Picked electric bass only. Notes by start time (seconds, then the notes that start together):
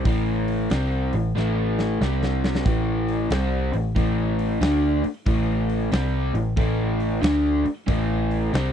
0.05 A1
0.71 C2
1.14 A1
1.36 A1
2.01 C2
2.66 A1
3.31 C2
3.74 A1
3.96 A1
4.61 D2
5.04 muted picked electric bass stroke
5.26 A1
5.92 C2
6.34 A1
6.57 A1
7.23 D2
7.65 muted picked electric bass stroke
7.88 A1
8.54 C2